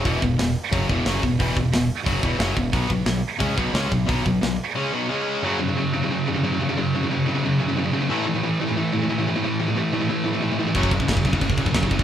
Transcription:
<<
  \new Staff \with { instrumentName = "Distorted electric guitar" } { \clef bass \time 4/4 \key fis \dorian \tempo 4 = 179 <e, b, e>8 <e, b,>8 <e, b,>8 r8 <fis, cis fis>8 <e, b, e>8 <fis, cis fis>8 <e, b,>8 | <e, b, e>8 <e, b,>8 <e, b,>8 r8 <fis, cis fis>8 <e, b, e>8 <fis, cis fis>8 <e, b,>8 | <b, fis b>8 <b, fis>8 <b, fis>8 r8 <cis gis cis'>8 <b, fis b>8 <cis gis cis'>8 <b, fis>8 | <b, fis b>8 <b, fis>8 <b, fis>8 r8 <cis gis cis'>8 <b, fis b>8 <cis gis cis'>4 |
<fis, cis fis>8 <fis, cis>16 <fis, cis>16 <fis, cis>8 <fis, cis>16 <fis, cis>16 <fis, cis>8 <fis, cis>16 <fis, cis>16 <fis, cis>16 <fis, cis>16 <fis, cis>16 <fis, cis>16 | <fis, cis>8 <fis, cis>16 <fis, cis>16 <fis, cis>8 <fis, cis>16 <fis, cis>16 <fis, cis>8 <fis, cis>16 <fis, cis>16 <fis, cis>16 <fis, cis>16 <fis, cis>16 <fis, cis>16 | <a, e a>8 <a, e>16 <a, e>16 <a, e>8 <a, e>16 <a, e>16 <a, e>8 <a, e>16 <a, e>16 <a, e>16 <a, e>16 <a, e>16 <a, e>16 | <a, e>8 <a, e>16 <a, e>16 <a, e>8 <a, e>16 <a, e>16 <a, e>8 <a, e>16 <a, e>16 <a, e>16 <a, e>16 <a, e>16 <a, e>16 |
<fis, cis fis>8 <fis, cis>16 <fis, cis>16 <fis, cis>8 <fis, cis>16 <fis, cis>16 <fis, cis>8 <fis, cis>16 <fis, cis>16 <fis, cis>16 <fis, cis>16 <fis, cis>16 <fis, cis>16 | }
  \new Staff \with { instrumentName = "Distorted electric guitar" } { \clef bass \time 4/4 \key fis \dorian <e, b, e>8 <e, b,>8 <e, b,>8 r8 <fis, cis fis>8 <e, b, e>8 <fis, cis fis>8 <e, b,>8 | <e, b, e>8 <e, b,>8 <e, b,>8 r8 <fis, cis fis>8 <e, b, e>8 <fis, cis fis>8 <e, b,>8 | <b, fis b>8 <b, fis>8 <b, fis>8 r8 <cis gis cis'>8 <b, fis b>8 <cis gis cis'>8 <b, fis>8 | <b, fis b>8 <b, fis>8 <b, fis>8 r8 <cis gis cis'>8 <b, fis b>8 <cis gis cis'>4 |
<fis, cis fis>8 <fis, cis>16 <fis, cis>16 <fis, cis>8 <fis, cis>16 <fis, cis>16 <fis, cis>8 <fis, cis>16 <fis, cis>16 <fis, cis>16 <fis, cis>16 <fis, cis>16 <fis, cis>16 | <fis, cis>8 <fis, cis>16 <fis, cis>16 <fis, cis>8 <fis, cis>16 <fis, cis>16 <fis, cis>8 <fis, cis>16 <fis, cis>16 <fis, cis>16 <fis, cis>16 <fis, cis>16 <fis, cis>16 | <a, e a>8 <a, e>16 <a, e>16 <a, e>8 <a, e>16 <a, e>16 <a, e>8 <a, e>16 <a, e>16 <a, e>16 <a, e>16 <a, e>16 <a, e>16 | <a, e>8 <a, e>16 <a, e>16 <a, e>8 <a, e>16 <a, e>16 <a, e>8 <a, e>16 <a, e>16 <a, e>16 <a, e>16 <a, e>16 <a, e>16 |
<fis, cis fis>8 <fis, cis>16 <fis, cis>16 <fis, cis>8 <fis, cis>16 <fis, cis>16 <fis, cis>8 <fis, cis>16 <fis, cis>16 <fis, cis>16 <fis, cis>16 <fis, cis>16 cis16 | }
  \new Staff \with { instrumentName = "Distorted electric guitar" } { \clef bass \time 4/4 \key fis \dorian r1 | r1 | r1 | r1 |
<fis, cis fis>4 <fis, cis fis>8 <fis, cis fis>8 <fis, cis fis>4 <fis, cis fis>8 <fis, cis fis>8 | <fis, cis fis>4 <fis, cis fis>8 <fis, cis fis>8 <fis, cis fis>4 <fis, cis fis>8 <fis, cis fis>8 | <a, e a>4 <a, e a>8 <a, e a>8 <a, e a>4 <a, e a>8 <a, e a>8 | <a, e a>4 <a, e a>8 <a, e a>8 <a, e a>4 <a, e a>8 <a, e a>8 |
<fis, cis fis>4 <fis, cis fis>8 <fis, cis fis>8 <fis, cis fis>4 <fis, cis fis>8 <fis, cis fis>8 | }
  \new Staff \with { instrumentName = "Fingered electric bass" } { \clef bass \time 4/4 \key fis \dorian e,,8 e,,8 e,,8 r8 fis,,8 e,,8 fis,,8 e,,8 | e,,8 e,,8 e,,8 r8 fis,,8 e,,8 fis,,8 e,,8 | b,,8 b,,8 b,,8 r8 cis,8 b,,8 cis,8 b,,8 | b,,8 b,,8 b,,8 r2 r8 |
r1 | r1 | r1 | r1 |
fis,,4 fis,,8 fis,,8 fis,,4 fis,,8 fis,,8 | }
  \new DrumStaff \with { instrumentName = "Drums" } \drummode { \time 4/4 <hho bd>8 bd8 <hho sn>4 <hho bd>8 bd8 <hho sn>8 bd8 | <hho bd>8 bd8 <hho sn>4 <hho bd>8 bd8 <hho sn>8 bd8 | <hho bd>8 bd8 <hho sn>4 <hho bd>8 bd8 <hho sn>8 bd8 | <hho bd>8 bd8 <hho sn>4 r4 r4 |
r4 r4 r4 r4 | r4 r4 r4 r4 | r4 r4 r4 r4 | r4 r4 r4 r4 |
<cymc bd>16 bd16 <cymc bd>16 bd16 <cymc bd sn>16 bd16 <cymc bd>16 bd16 <cymc bd>16 bd16 <cymc bd>16 bd16 <cymc bd sn>16 bd16 <cymc bd>16 bd16 | }
>>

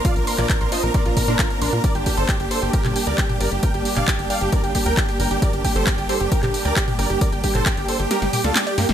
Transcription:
<<
  \new Staff \with { instrumentName = "Synth pluck" } { \time 4/4 \key g \minor \tempo 4 = 134 f'16 r16 c'''16 f'16 r16 c'''16 f'16 r16 c'''16 f'16 r16 c'''16 f'16 r16 c'''16 f'16 | r16 g''16 g'16 r16 g''16 g'16 r16 g''16 g'16 r16 g''16 g'16 r16 g''16 g'16 r16 | g''16 g'16 r16 g''16 g'16 r16 g''16 g'16 r16 g''16 g'16 r16 g''16 g'16 r16 g''16 | g'16 r16 g''16 g'16 r16 g''16 g'16 r16 g''16 g'16 r16 g''16 g'16 r16 g''16 g'16 |
r16 g''16 g'16 r16 g''16 g'16 r16 g''16 g'16 r16 d'''16 d''16 r16 d''16 g'16 r16 | }
  \new Staff \with { instrumentName = "Supersaw synth" } { \time 4/4 \key g \minor <d'' f''>16 bes'16 bes'16 <bes' d''>16 bes'16 bes'16 <c'' ees''>16 bes'16 <bes' d''>16 bes'16 bes'16 <d' bes'>16 bes'16 bes'16 <d' bes'>16 bes'16 | <bes' d''>16 g'16 g'16 <a' c''>16 g'16 g'16 <a' c''>16 g'16 <g' bes'>16 g'16 g'16 <bes' d''>16 g'16 g'16 <bes' d''>16 g'16 | <bes' g''>16 g'16 g'16 <d'' f''>16 g'16 g'16 <d'' f''>16 g'16 <bes' d''>16 g'16 g'16 <bes' g''>16 g'16 g'16 <bes' g''>16 g'16 | <bes' d''>16 g'16 g'16 <a' c''>16 g'16 g'16 <a' c''>16 g'16 <g' bes'>16 g'16 g'16 <bes' d''>16 g'16 g'16 <bes' d''>16 g'16 |
<bes' d''>16 g'16 g'16 <a' c''>16 g'16 g'16 <a' c''>16 g'16 <g' bes'>16 g'16 g'16 <f' a'>16 g'16 g'16 <bes g'>16 g'16 | }
  \new Staff \with { instrumentName = "String section" } { \time 4/4 \key g \minor << { d'1~ | d'1~ | d'1~ | d'1~ |
d'1 | } \\ { <bes c'>1 | g1~ | g1~ | g1~ |
g1 | } >> }
  \new Staff \with { instrumentName = "Analog synth bass" } { \clef bass \time 4/4 \key g \minor r16 bes,,16 r16 bes,,16 r16 bes,,16 r16 bes,,16 r16 bes,,16 r16 bes,16 r8 bes,,16 bes,16 | r16 g,,16 r16 g,,16 r16 g,,16 r16 g,,16 r16 g,,16 r16 d,16 r8 g,,16 g,,16 | r16 g,,16 r16 g,,16 r16 g,,16 r16 g,,16 r16 g,,16 r16 d,16 r8 g,,16 g,,16 | r16 g,,16 r16 g,,16 r16 g,,16 r16 g,,16 r16 g,,16 r16 d,16 r8 g,,16 g,,16 |
r16 g,,16 r16 g,,16 r16 g,,16 r16 g,,16 r16 g,,16 r16 d,16 r8 g,16 f,,16 | }
  \new DrumStaff \with { instrumentName = "Drums" } \drummode { \time 4/4 <hh bd>16 hh16 hho16 <hc hh toml>16 <hc hh bd>16 hh16 hho16 hh16 <hh bd>16 hh16 <hho bd toml>16 hh16 <hc hh bd>16 hh16 hho16 hh16 | <hh bd>16 hh16 <hho bd>16 hh16 <hc hh bd>16 hh16 hho16 hh16 <hh bd>16 <hc hh toml>16 hho16 hh16 <hc hh bd>16 <hh toml>16 hho16 hh16 | <hh bd>16 hh16 hho16 <hc hh toml>16 <hc hh bd>16 hh16 hho16 hh16 <hh bd>16 hh16 <hho bd>16 hh16 <hc hh bd>16 hh16 hho16 hh16 | <hh bd>16 hh16 <hho bd>16 hh16 <hc hh bd>16 hh16 hho16 hh16 <hh bd>16 <hc hh toml>16 hho16 hh16 <hc hh bd>16 <hh toml>16 hho16 hh16 |
<hh bd>16 hh16 <hho bd>16 <hc hh toml>16 <hc hh bd>16 hh16 hho16 hh16 <hh sn>16 <hh sn>16 <hho toml>16 <hh sn>16 <hc hh sn>16 hh16 <hho sn>16 <hh sn>16 | }
>>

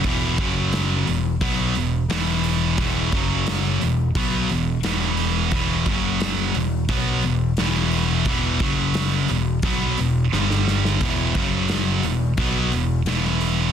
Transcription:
<<
  \new Staff \with { instrumentName = "Distorted electric guitar" } { \clef bass \time 4/4 \key e \minor \tempo 4 = 88 <e, b, e>8 <fis, cis fis>4 <e, b,>8 <b, fis b>8 <e, b,>8 <e, b, e>4 | <e, b, e>8 <fis, cis fis>4 <e, b,>8 <b, fis b>8 <e, b,>8 <e, b, e>4 | <e, b, e>8 <fis, cis fis>4 <e, b,>8 <b, fis b>8 <e, b,>8 <e, b, e>4 | <e, b, e>8 <fis, cis fis>4 <e, b,>8 <b, fis b>8 <e, b,>8 <g, d g>4 |
<e, b, e>8 <fis, cis fis>4 <e, b,>8 <b, fis b>8 <e, b,>8 <e, b, e>4 | }
  \new Staff \with { instrumentName = "Distorted electric guitar" } { \clef bass \time 4/4 \key e \minor <e, b, e>8 <fis, cis fis>4 <e, b,>8 <b, fis b>8 <e, b,>8 <e, b, e>4 | <e, b, e>8 <fis, cis fis>4 <e, b,>8 <b, fis b>8 <e, b,>8 <e, b, e>4 | <e, b, e>8 <fis, cis fis>4 <e, b,>8 <b, fis b>8 <e, b,>8 <e, b, e>4 | <e, b, e>8 <fis, cis fis>4 <e, b,>8 <b, fis b>8 <e, b,>8 <g, d g>4 |
<e, b, e>8 <fis, cis fis>4 <e, b,>8 <b, fis b>8 <e, b,>8 <e, b, e>4 | }
  \new Staff \with { instrumentName = "Picked electric bass" } { \clef bass \time 4/4 \key e \minor e,,8 r4 e,,8 b,,8 e,,8 r4 | e,,8 fis,,4 e,,8 b,,8 e,,8 e,,4 | e,,8 fis,,4 e,,8 b,,8 e,,8 e,,4 | e,,8 fis,,4 e,,8 b,,8 e,,8 g,,4 |
e,,8 r4 e,,8 b,,8 e,,8 e,,4 | }
  \new DrumStaff \with { instrumentName = "Drums" } \drummode { \time 4/4 <hho bd>8 <hho bd>8 <hho sn>8 hho8 <hho bd>8 hho8 <hho sn>8 hho8 | <hho bd>8 <hho bd>8 <hho sn>8 hho8 <hho bd>8 hho8 <hho sn>16 sn16 hho8 | <hho bd>8 <hho bd>8 <hho sn>8 hho8 <hho bd>8 hho8 <hho sn>16 sn16 hho8 | <hho bd>8 <hho bd>8 <hho sn>8 hho8 <hho bd>8 hho8 sn16 sn16 sn16 sn16 |
<cymc hho bd>8 <hho bd>8 <hho sn>8 hho8 <hho bd>8 hho8 <hho sn>16 sn16 hho8 | }
>>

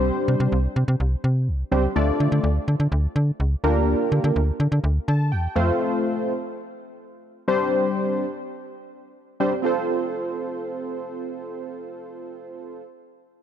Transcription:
<<
  \new Staff \with { instrumentName = "Synth keys" } { \time 4/4 \key f \major \tempo 4 = 125 << { r1 | r1 | r2 r8 a''8 g''8 f''8 | r1 |
r1 | r1 | r1 | } \\ { <g c' d' g' c''>4 r2 r8 <g c' d' g' c''>16 r16 | <a d' f' a' d''>4 r2 r8 <bes d' f' g' bes'>8~ | <bes d' f' g' bes'>4 r2 r8 <a c' f' a' c''>8~ | <a c' f' a' c''>4 r2 r8 <g c' d' g' c''>8~ |
<g c' d' g' c''>4 r2 r8 <g c' d' g' c''>16 r16 | <c' f' a' c''>1~ | <c' f' a' c''>1 | } >> }
  \new Staff \with { instrumentName = "FM bass" } { \clef bass \time 4/4 \key f \major c,8 c16 c16 c,8 c16 c16 c,8 c8 c,8 des,8 | d,8 d16 d16 d,8 d16 d16 d,8 d8 des,8 d,8~ | d,8 d16 d16 d,8 d16 d16 d,8 d8 e,8 f,8 | r1 |
r1 | r1 | r1 | }
>>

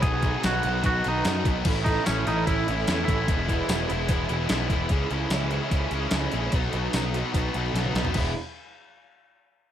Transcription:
<<
  \new Staff \with { instrumentName = "String machine" } { \time 4/4 \key e \major \tempo 4 = 148 << { <b' dis'' b''>1 | <a' cis'' a''>1 | <gis' b' gis''>1 | r1 |
r1 | r1 | } \\ { fis'1 | e'1~ | e'1 | r1 |
r1 | r1 | } >> }
  \new Staff \with { instrumentName = "Clean electric guitar" } { \time 4/4 \key e \major gis'4 fis'4 fis'8 dis'4 r8 | r8 dis'8 cis'8 dis'8 e'4. e'8~ | e'2. r4 | r1 |
r1 | r1 | }
  \new Staff \with { instrumentName = "Distorted electric guitar" } { \clef bass \time 4/4 \key e \major <b, dis fis b dis'>8 <b, dis fis b dis'>8 <b, dis fis b dis'>8 <b, dis fis b dis'>8 <b, dis fis b dis'>8 <b, dis fis b dis'>8 <b, dis fis b dis'>8 <b, dis fis b dis'>8 | <a, e a cis' e'>8 <a, e a cis' e'>8 <a, e a cis' e'>8 <a, e a cis' e'>8 <a, e a cis' e'>8 <a, e a cis' e'>8 <a, e a cis' e'>8 <a, e a cis' e'>8 | <e gis b e'>8 <e gis b e'>8 <e gis b e'>8 <e gis b e'>8 <e gis b e'>8 <e gis b e'>8 <e gis b e'>8 <e gis b e'>8 | <cis e gis cis'>8 <cis e gis cis'>8 <cis e gis cis'>8 <cis e gis cis'>8 <cis e gis cis'>8 <cis e gis cis'>8 <cis e gis cis'>8 <cis e gis cis'>8 |
<b, fis b dis'>8 <b, fis b dis'>8 <b, fis b dis'>8 <b, fis b dis'>8 <b, fis b dis'>8 <b, fis b dis'>8 <b, fis b dis'>8 <b, fis b dis'>8 | <e gis b e'>8 r2. r8 | }
  \new Staff \with { instrumentName = "Overdriven electric guitar" } { \clef bass \time 4/4 \key e \major <b, fis b dis' fis'>8 <b, fis b dis' fis'>8 <b, fis b dis' fis'>8 <b, fis b dis' fis'>8 <b, fis b dis' fis'>8 <b, fis b dis' fis'>8 <b, fis b dis' fis'>8 <b, fis b dis' fis'>8 | <a, e a cis' e'>8 <a, e a cis' e'>8 <a, e a cis' e'>8 <a, e a cis' e'>8 <a, e a cis' e'>8 <a, e a cis' e'>8 <a, e a cis' e'>8 <a, e a cis' e'>8 | <e, b, e gis b e'>8 <e, b, e gis b e'>8 <e, b, e gis b e'>8 <e, b, e gis b e'>8 <e, b, e gis b e'>8 <e, b, e gis b e'>8 <e, b, e gis b e'>8 <e, b, e gis b e'>8 | <cis e gis cis' e'>8 <cis e gis cis' e'>8 <cis e gis cis' e'>8 <cis e gis cis' e'>8 <cis e gis cis' e'>8 <cis e gis cis' e'>8 <cis e gis cis' e'>8 <cis e gis cis' e'>8 |
<b, fis b dis' fis'>8 <b, fis b dis' fis'>8 <b, fis b dis' fis'>8 <b, fis b dis' fis'>8 <b, fis b dis' fis'>8 <b, fis b dis' fis'>8 <b, fis b dis' fis'>8 <b, fis b dis' fis'>8 | <e, b, e gis b e'>8 r2. r8 | }
  \new Staff \with { instrumentName = "Picked electric bass" } { \clef bass \time 4/4 \key e \major b,,4 b,,8 b,,8 b,,8 b,,8 fis,8 b,,8 | a,,4 a,,8 a,,8 a,,8 a,,8 e,8 a,,8 | e,,4 e,,8 e,,8 e,,8 e,,8 b,,8 e,,8 | cis,8 cis,8 cis,4 cis,8 cis,8 cis,8 ais,,8 |
b,,8 b,,8 b,,4 b,,8 b,,8 b,,8 b,,8 | e,,8 r2. r8 | }
  \new DrumStaff \with { instrumentName = "Drums" } \drummode { \time 4/4 <hh bd>8 <hh bd>8 <hh sn tamb>8 hh8 <hh bd>8 hh8 <hh sn tamb>8 <hh bd>8 | <cymc bd>8 <hh bd>8 <hh sn tamb>8 hh8 <hh bd>8 hh8 <hh sn tamb>8 <hh bd>8 | <hh bd>8 <hh bd>8 <hh sn tamb>8 hh8 <hh bd>8 hh8 <hh sn tamb>8 <hh bd>8 | <hh bd>8 hh8 <hh sn tamb>8 hh8 <hh bd>8 hh8 <hh sn tamb>8 hh8 |
<hh bd>16 sn16 hh8 <hh sn tamb>8 hh8 <hh bd>8 hh16 sn16 <hh sn>16 toml16 <hh sn>16 tomfh16 | <cymc bd>4 r4 r4 r4 | }
>>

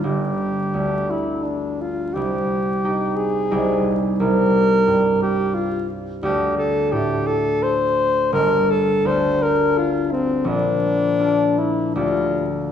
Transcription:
<<
  \new Staff \with { instrumentName = "Alto saxophone" } { \time 3/4 \key g \minor \tempo 4 = 86 g'4. e'8 d'8 f'8 | g'4. aes'4 r8 | bes'4. g'8 f'8 r8 | g'8 a'8 g'8 a'8 c''4 |
bes'8 a'8 c''8 bes'8 f'8 c'8 | d'4. e'8 f'8 r8 | }
  \new Staff \with { instrumentName = "Harp" } { \clef bass \time 3/4 \key g \minor <g,, d' g'>4 d,2 | c,4 <ees' g'>4 <c, ees' g'>4 | c,4 g,2 | d,4 a,2 |
g,,4 d,2 | bes,,4 <d' f'>4 <d, d' g'>4 | }
>>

